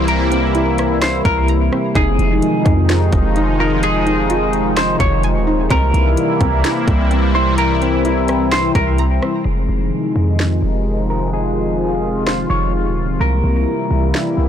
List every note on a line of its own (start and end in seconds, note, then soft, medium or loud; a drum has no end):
0.00 1.21 C2 loud
0.00 5.66 C3 medium
0.00 1.92 E3 medium
0.00 1.92 G3 medium
0.00 1.92 A#3 medium
0.00 0.30 C4 medium
0.00 0.54 E4 medium
0.00 1.92 E4 medium
0.08 0.98 A#4 medium
0.08 1.48 A#5 loud
0.08 closed hi-hat medium
0.32 1.71 C4 medium
0.32 closed hi-hat medium
0.55 1.96 E4 medium
0.55 closed hi-hat medium
0.78 cross-stick loud
0.78 closed hi-hat medium
1.02 1.24 C5 medium
1.02 snare loud
1.02 closed hi-hat medium
1.25 1.70 C2 loud
1.25 1.47 A#4 medium
1.25 kick loud
1.25 closed hi-hat medium
1.48 1.96 A#5 loud
1.48 closed hi-hat medium
1.72 1.96 C4 medium
1.72 cross-stick medium
1.95 2.18 F1 loud
1.95 5.67 D#3 medium
1.95 5.67 F3 medium
1.95 5.67 G#3 medium
1.95 5.67 D#4 medium
1.95 2.64 D#4 loud
1.95 3.56 G#4 loud
1.95 kick loud
1.95 closed hi-hat medium
2.19 2.41 F1 loud
2.19 closed hi-hat medium
2.42 closed hi-hat medium
2.65 3.11 F2 loud
2.65 3.35 D#4 medium
2.65 kick medium
2.65 closed hi-hat medium
2.89 3.58 F4 loud
2.89 snare loud
2.89 closed hi-hat medium
3.12 4.96 F1 loud
3.12 kick loud
3.12 closed hi-hat medium
3.36 4.05 D#4 medium
3.36 closed hi-hat medium
3.59 4.29 F4 medium
3.59 3.82 A#4 medium
3.83 4.73 G#4 loud
3.83 5.23 G#5 loud
3.83 closed hi-hat medium
4.06 5.46 D#4 medium
4.06 closed hi-hat medium
4.30 5.71 F4 medium
4.30 closed hi-hat medium
4.53 closed hi-hat medium
4.77 4.99 C5 medium
4.77 snare loud
4.77 closed hi-hat medium
5.00 5.37 F1 loud
5.00 5.22 C#5 medium
5.00 kick loud
5.00 closed hi-hat medium
5.23 5.71 G#5 loud
5.23 closed hi-hat medium
5.35 5.69 D#1 loud
5.47 5.71 D#4 medium
5.70 5.93 C2 loud
5.70 9.42 C3 medium
5.70 9.42 E3 medium
5.70 9.42 G3 medium
5.70 7.56 A#3 medium
5.70 6.40 C4 loud
5.70 9.42 E4 medium
5.70 7.31 A#4 loud
5.70 kick loud
5.70 closed hi-hat medium
5.94 6.16 C2 loud
5.94 closed hi-hat medium
6.17 closed hi-hat medium
6.41 6.63 C2 loud
6.41 7.10 C4 medium
6.41 kick medium
6.41 closed hi-hat medium
6.64 7.34 E4 loud
6.64 snare loud
6.64 closed hi-hat medium
6.88 8.71 C2 loud
6.88 kick loud
6.88 closed hi-hat medium
7.11 7.80 C4 medium
7.11 closed hi-hat medium
7.35 8.04 E4 medium
7.35 7.57 C5 medium
7.58 9.44 C4 medium
7.58 8.48 A#4 medium
7.58 8.98 A#5 loud
7.58 closed hi-hat medium
7.82 9.21 C4 medium
7.82 closed hi-hat medium
8.05 9.45 E4 loud
8.05 closed hi-hat medium
8.28 cross-stick loud
8.28 closed hi-hat medium
8.52 8.74 C5 medium
8.52 snare loud
8.52 closed hi-hat medium
8.75 9.20 C2 loud
8.75 8.97 A#4 medium
8.75 kick loud
8.75 closed hi-hat medium
8.98 9.46 A#5 loud
8.98 closed hi-hat medium
9.22 9.45 C4 medium
9.22 cross-stick medium
9.45 9.68 F1 loud
9.45 14.49 C3 medium
9.45 13.17 D#3 medium
9.45 13.17 F3 medium
9.45 13.17 G#3 medium
9.45 11.31 D#4 medium
9.45 11.06 G#4 medium
9.69 9.91 F1 loud
10.16 10.61 F2 loud
10.40 snare loud
10.63 12.46 F1 loud
11.10 11.32 A#4 medium
11.33 13.18 F4 medium
11.33 12.23 G#4 loud
12.27 12.49 C5 medium
12.27 snare loud
12.50 12.87 F1 loud
12.50 12.72 C#5 medium
12.85 13.19 D#1 loud
13.20 13.43 C2 loud
13.20 14.49 E3 medium
13.20 14.49 G3 medium
13.20 14.49 A#3 medium
13.20 14.49 E4 medium
13.20 14.49 A#4 loud
13.44 13.66 C2 loud
13.91 14.13 C2 loud
14.15 snare loud
14.38 14.49 C2 loud